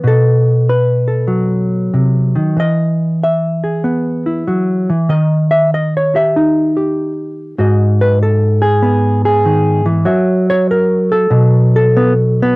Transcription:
hollow-body jazz guitar
Already playing: B3
0.04 B2 A4
0.69 B4
1.08 A4
1.27 F#3
1.94 C3
2.35 D#3
2.57 E3 D#5
3.23 E5
3.64 G#4
3.84 B3
4.26 E4
4.47 F#3
4.90 E3
5.09 D#3 D#5
5.51 E5
5.74 D#5
5.97 C#5
6.15 G4 E5
6.36 D#4
6.77 G4
7.58 G#2 F#4 D#5
8.01 B4
8.23 A4
8.62 G#4
8.82 B3
9.25 G#4
9.45 D#3
9.86 E3
10.05 F#3 C#5 E5
10.50 C#5
10.71 A#4
11.12 A4
11.30 B2 F#3
11.76 A4
11.97 B3
12.43 B3

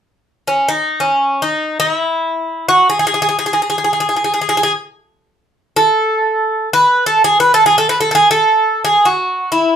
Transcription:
bouzouki
0.47 C#4
0.69 D#4
1.00 C#4
1.42 D#4
1.80 D#4
1.91 E4
2.69 F#4
2.90 G#4
2.99 G#4
3.07 G#4
3.14 G#4
3.22 G#4
3.29 G#4
3.39 G#4
3.46 G#4
3.53 G#4
3.62 G#4
3.70 G#4
3.78 G#4
3.84 G#4
3.93 G#4
4.00 G#4
4.09 G#4
4.16 G#4
4.24 G#4
4.34 G#4
4.41 G#4
4.49 G#4
4.57 G#4
4.63 G#4
5.76 A4
6.73 B4
7.06 A4
7.24 G#4
7.40 B4
7.54 A4
7.66 G#4
7.78 A4
7.89 B4
8.01 A4
8.11 G#4 A4
8.31 A4
8.85 G#4
9.05 F#4
9.52 E4

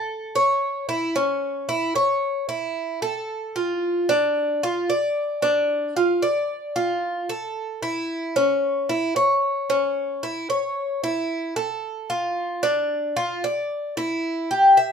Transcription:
cuban tres
Already playing: A4
0.35 C#5
0.89 E4
1.16 C#4
1.69 E4
1.96 C#5
2.49 E4
3.02 A4
3.56 F4
4.09 D4
4.63 F4
4.90 D5
5.42 D4
5.96 F4
6.22 D5
6.76 F4
7.29 A4
7.83 E4
8.36 C#4
8.89 E4
9.16 C#5
9.70 C#4
10.23 E4
10.50 C#5
11.04 E4
11.56 A4
12.10 F4
12.63 D4
13.17 F4
13.44 D5
13.97 E4
14.51 G4
14.77 E5

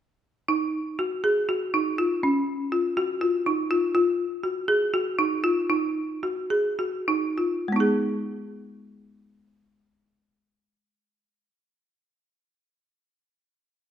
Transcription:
marimba
0.48 D#4
0.99 F#4
1.24 G#4
1.49 F#4
1.74 D#4
1.98 F4
2.23 C#4
2.72 F4
2.97 F#4
3.21 F4
3.46 D#4
3.71 F4
3.95 F4
4.43 F#4
4.68 G#4
4.94 F#4
5.19 D#4
5.44 F4
5.70 D#4
6.23 F#4
6.50 G#4
6.79 F#4
7.08 D#4
7.38 F4
7.68 G#3
7.72 B3 D#4
7.80 G#4

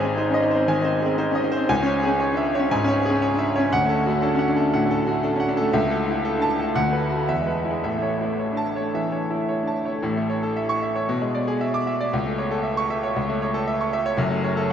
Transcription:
grand piano
Already playing: G#1 G#2 C4 C5 G#5
0.00 G#4
0.05 C4
0.17 D#4 C5
0.30 C#4 D#5
0.42 D#4
0.51 C5
0.55 C4
0.68 D#3 G#5
0.80 C4
0.84 C5
1.02 C4 G#4
1.18 D#4 C5
1.31 C#4 D#5
1.44 D#4
1.52 C5
1.57 C4
1.69 C#2 G#5
1.82 C#4 C#5
2.03 G#4
2.07 C#4
2.20 C#5
2.33 D4
2.37 E5
2.55 C#5
2.59 C#4
2.71 G#2 G#5
2.84 C#4 C#5
3.05 G#4
3.10 C#4
3.22 C#5
3.34 D4
3.39 E5
3.56 C#4 C#5
3.72 D2 F#5
3.85 A3 A4
4.06 A3 F#4
4.22 D4 A4
4.35 C#4
4.39 F#5
4.48 D4
4.57 A4
4.61 A3
4.74 A2 F#5
4.86 A3
4.91 A4
5.07 F#4
5.12 A3
5.23 D4 A4
5.36 C#4
5.40 F#5
5.48 D4
5.57 A4
5.62 A3
5.73 C#2 E5
5.87 A3
5.91 A4
6.08 E4
6.12 A3
6.25 A4
6.37 D4
6.42 A5
6.59 A3 A4
6.76 D2 F#5
6.89 A3 B4
7.10 F#4
7.15 A3
7.28 E2 E5
7.42 G#3
7.47 B4
7.65 E4
7.70 G#3
7.83 A1 A2 E5
7.98 A3 C#5
8.21 A3 E4
8.39 C#5
8.52 D4
8.57 A5
8.76 C#5
8.81 A3
8.95 E3 E5
9.08 A3 C#5
9.30 E4
9.35 A3
9.49 C#5
9.63 D4
9.67 A5
9.85 C#5
9.90 A3
10.02 A1 A2
10.17 A3
10.30 C#5
10.43 A4
10.57 E5
10.69 C#6
10.82 E5
10.96 C#5
11.09 B2
11.22 G#3
11.35 D5
11.47 G#4
11.61 E5
11.74 D6
11.87 E5
12.01 D5
12.13 C#2
12.26 A3
12.38 C#5
12.51 A4
12.63 E5
12.77 C#6
12.90 E5
13.03 C#5
13.16 C#2
13.29 A3
13.42 C#5
13.54 A4
13.67 E5
13.81 C#6
13.93 E5
14.06 C#5
14.17 F#1 F#2
14.31 A3
14.44 C#5
14.57 A4

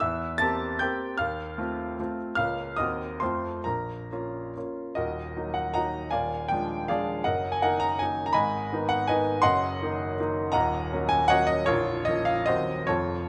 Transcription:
grand piano
0.00 E2 E5 E6
0.38 A#3 C4 G4 A5 A6
0.79 A#3 C4 G4 G5 G6
1.18 D#2 F5 F6
1.58 A3 C4 F4
2.00 A3 C4 F4
2.35 C#2 A#3 C#4 F4 F5 F6
2.76 D#2 A#3 C4 D#5 D#6
2.80 F#4
3.20 F2 A3 C4 F4 C5 C6
3.64 A#1 A#4 A#5
4.12 A#3 C#4 F4
4.57 A#3 C#4 F4
4.95 D#1 D#2 F#4 A#4 D#5
5.37 F#3 A#3 D#4
5.54 F#5
5.74 F#3 A#3 D#4 D#5 F#5 A#5
6.11 D#1 D#2 D5 F5 G#5
6.49 F3 G#3 D4 G5
6.88 F3 G#3 D4 G#4 D5 F5
7.24 F#1 F#2 A#4 D#5 F#5
7.52 G#5
7.62 D#3 A#3 D#4 A#4 D#5 F#5
7.80 A#5
7.99 D#3 A#3 D#4 G#5
8.26 A#5
8.33 G#1 G#2 D#5 G#5 B5
8.73 D#3 B3 D#4
8.89 F#5
9.07 D#3 B3 D#4 B4 D#5 G#5
9.42 F#1 F#2 D#5 F#5 C6
9.82 D#3 A#3 D#4
10.19 D#3 A#3 D#4
10.52 D#1 D#2 D#5 F#5 A#5
10.93 F#3 A#3 C#4
11.09 G#5
11.28 F#3 A#3 C#4 C#5 D#5 F#5
11.47 D#5
11.66 A#0 A#1 F4 A#4 C#5
12.05 F3 A#3 C#4 D#5
12.25 F5
12.46 D#1 D#2 F#3 C4 F#4 C5 D#5
12.87 F1 F2 F4 A4 C#5

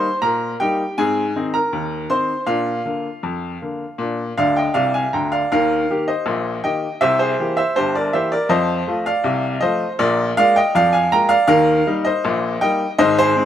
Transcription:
upright piano
Already playing: C5 C6
0.22 A#2 A#4 A#5
0.60 G3 A#3 D#4 G4 G5
0.98 G#2 C4 G#4 G#5
1.36 D#3 C4 D#4
1.54 A#4 A#5
1.73 D#2
2.10 D#3 C4 D#4 C5 C6
2.46 A#2 D4 F4 F5
2.85 D3 A#3
3.23 F2
3.62 D3 A#3
3.98 A#2 D4
4.37 D2 D3 D5 F5
4.57 D#5 G5
4.74 C2 C3 D5 F5
4.94 F5 G#5
5.13 D2 D3 G5 A#5
5.32 D5 F5
5.52 D#2 D#3 A#4 F5
5.90 D#3 A#3 G4
6.08 C5 D#5
6.26 A#1 A#2
6.64 D#3 A#3 G4 D#5 G5
7.01 C2 C3 C5 E5
7.19 G#4 C5
7.40 E3 A#3 G4
7.57 C5 E5
7.76 G1 G2 G4 C5
7.95 A#4 D5
8.13 E3 A#3 G4 C5 E5
8.32 A#4 D5
8.49 F2 F3 C5 D#5
8.87 F3 A3 F4
9.06 D5 F5
9.24 C2 C3
9.61 F3 A3 F4 C5 D#5
9.99 A#1 A#2 A#4 D5
10.37 G#3 A#3 F4 D5 F5
10.56 D#5 G5
10.75 F2 F3 D5 F5
10.93 F5 G#5
11.12 G#3 A#3 F4 G5 A#5
11.29 D5 F5
11.47 D#2 D#3 A#4 F5
11.87 G3 A#3 D#4
12.05 C5 D#5
12.24 A#1 A#2
12.61 G3 A#3 D#4 D#5 G5
12.98 G#1 G#2 C5 D#5
13.19 G#4 C5
13.36 G#3 C4 D#4

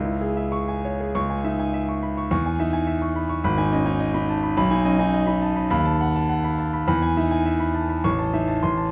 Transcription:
grand piano
Already playing: C#2
0.05 E4
0.21 G#4
0.37 E5
0.52 C#6
0.68 G#5
0.85 C#5
1.00 G#4
1.15 C#2 C#6
1.30 G#5
1.44 D#4 E5
1.59 G#5
1.74 E5
1.89 C#6
2.03 B5
2.17 C#6
2.31 E2 C#6
2.46 G#5
2.59 D#4 E5
2.73 G#5
2.87 E5
3.02 C#6
3.16 B5
3.29 C#6
3.44 G#1 B5
3.57 D#4 G#5
3.72 C#4 D#5
3.85 D#4 G#5
4.00 D#5
4.14 D#4 B5
4.29 A5
4.43 B5
4.57 B1 B5
4.70 D#4 G#5
4.85 C#4 D#5
4.99 D#4 G#5
5.14 D#5
5.27 D#4 B5
5.42 A5
5.56 B5
5.70 D#2 B5
5.85 A5
6.01 F#5
6.16 A5
6.29 F#5
6.44 B5
6.58 A5
6.73 B5
6.88 E2 B5
7.02 G#5
7.17 D#4 E5
7.31 G#5
7.46 E5
7.60 B5
7.74 A5
7.89 B5
8.04 A1 C#6
8.19 A5
8.33 D#4 E5
8.48 A5
8.63 A1 C6
8.77 A5

